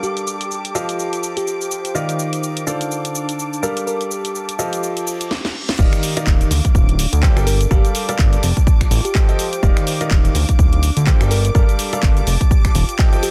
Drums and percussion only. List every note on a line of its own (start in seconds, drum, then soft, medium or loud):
0.03 shaker soft
0.17 closed hi-hat soft
0.17 shaker soft
0.27 shaker medium
0.41 closed hi-hat medium
0.41 shaker soft
0.51 shaker soft
0.65 closed hi-hat medium
0.65 shaker soft
0.75 shaker medium
0.89 closed hi-hat medium
0.89 shaker soft
0.99 shaker soft
1.13 closed hi-hat soft
1.13 shaker soft
1.23 shaker medium
1.37 closed hi-hat medium
1.37 shaker soft
1.47 shaker soft
1.61 shaker soft
1.71 shaker medium
1.85 closed hi-hat medium
1.85 shaker soft
1.95 shaker soft
2.09 closed hi-hat soft
2.09 shaker soft
2.19 shaker medium
2.33 closed hi-hat medium
2.33 shaker soft
2.43 shaker soft
2.57 closed hi-hat soft
2.57 shaker soft
2.67 shaker medium
2.81 closed hi-hat medium
2.81 shaker soft
2.91 shaker soft
3.05 closed hi-hat medium
3.05 shaker soft
3.15 shaker medium
3.29 closed hi-hat medium
3.29 shaker soft
3.39 shaker soft
3.53 shaker soft
3.63 shaker medium
3.77 closed hi-hat medium
3.77 shaker soft
3.87 shaker soft
4.01 closed hi-hat soft
4.01 shaker soft
4.11 shaker medium
4.25 closed hi-hat medium
4.25 shaker soft
4.35 shaker soft
4.49 closed hi-hat medium
4.49 shaker soft
4.59 shaker medium
4.73 closed hi-hat medium
4.73 shaker soft
4.83 shaker soft
4.97 closed hi-hat medium
4.97 shaker soft
5.07 shaker medium
5.21 closed hi-hat medium
5.21 shaker soft
5.31 snare medium
5.45 snare medium
5.69 snare medium
5.79 kick loud
5.79 crash loud
5.79 shaker soft
5.93 finger snap medium
5.93 closed hi-hat soft
5.93 shaker soft
6.03 open hi-hat loud
6.03 shaker medium
6.17 closed hi-hat medium
6.17 shaker soft
6.27 kick loud
6.27 clap loud
6.27 shaker soft
6.41 closed hi-hat medium
6.41 shaker soft
6.51 open hi-hat loud
6.51 shaker medium
6.65 kick medium
6.65 closed hi-hat medium
6.65 shaker soft
6.75 kick loud
6.75 shaker soft
6.89 closed hi-hat medium
6.99 open hi-hat loud
6.99 shaker medium
7.13 closed hi-hat medium
7.13 shaker soft
7.23 kick loud
7.23 clap loud
7.23 shaker soft
7.37 finger snap medium
7.37 shaker soft
7.47 open hi-hat medium
7.47 shaker medium
7.61 closed hi-hat medium
7.61 shaker soft
7.71 kick loud
7.71 shaker soft
7.85 closed hi-hat soft
7.85 shaker soft
7.95 open hi-hat loud
7.95 shaker medium
8.09 closed hi-hat medium
8.09 shaker soft
8.19 kick loud
8.19 clap loud
8.19 shaker soft
8.33 closed hi-hat medium
8.33 shaker soft
8.43 open hi-hat loud
8.43 shaker medium
8.57 kick medium
8.57 closed hi-hat medium
8.57 shaker soft
8.67 kick loud
8.67 shaker soft
8.81 finger snap medium
8.81 kick medium
8.81 closed hi-hat medium
8.81 shaker soft
8.91 open hi-hat loud
8.91 shaker medium
9.05 closed hi-hat medium
9.05 shaker soft
9.15 kick loud
9.15 clap loud
9.15 shaker soft
9.29 closed hi-hat soft
9.29 shaker soft
9.39 open hi-hat loud
9.39 shaker medium
9.53 closed hi-hat medium
9.53 shaker soft
9.63 kick loud
9.63 shaker soft
9.77 finger snap medium
9.77 closed hi-hat soft
9.77 shaker soft
9.87 open hi-hat loud
9.87 shaker medium
10.01 closed hi-hat medium
10.01 shaker soft
10.11 kick loud
10.11 clap loud
10.11 shaker soft
10.25 closed hi-hat medium
10.25 shaker soft
10.35 open hi-hat loud
10.35 shaker medium
10.49 kick medium
10.49 closed hi-hat medium
10.49 shaker soft
10.59 kick loud
10.59 shaker soft
10.73 closed hi-hat medium
10.83 open hi-hat loud
10.83 shaker medium
10.97 closed hi-hat medium
10.97 shaker soft
11.07 kick loud
11.07 clap loud
11.07 shaker soft
11.21 finger snap medium
11.21 shaker soft
11.31 open hi-hat medium
11.31 shaker medium
11.45 closed hi-hat medium
11.45 shaker soft
11.55 kick loud
11.55 shaker soft
11.69 closed hi-hat soft
11.69 shaker soft
11.79 open hi-hat loud
11.79 shaker medium
11.93 closed hi-hat medium
11.93 shaker soft
12.03 kick loud
12.03 clap loud
12.03 shaker soft
12.17 closed hi-hat soft
12.17 shaker soft
12.27 open hi-hat loud
12.27 shaker medium
12.41 kick medium
12.41 closed hi-hat medium
12.41 shaker soft
12.51 kick loud
12.51 shaker soft
12.65 finger snap medium
12.65 kick medium
12.65 closed hi-hat medium
12.65 shaker soft
12.75 open hi-hat loud
12.75 shaker medium
12.89 closed hi-hat medium
12.89 shaker soft
12.99 kick loud
12.99 clap loud
12.99 shaker soft
13.13 closed hi-hat soft
13.13 shaker soft
13.23 open hi-hat loud
13.23 shaker medium